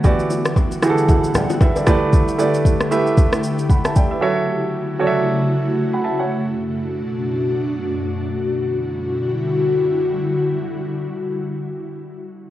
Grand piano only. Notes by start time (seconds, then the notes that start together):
0.04 E3 E4 F#4 G4 D5
0.82 E3 E4 F#4 G4 G#4
0.90 A4
1.35 D5 G5
1.61 B4 E5
1.76 A4 D5
1.86 A3 E4 G4 B4 D5
2.38 A3 E4 G4 B4 D5
2.91 A3 E4 G4 B4 E5
3.70 F#5 B5
3.85 E5 A5
3.96 D5 G5
4.11 B4 E5
4.21 F#3 F#4 A4 C#5 E5
4.99 F#3 F#4 A4 C#5 D5
5.07 E5
5.93 F#5 B5
6.04 E5 A5
6.19 C#5 F#5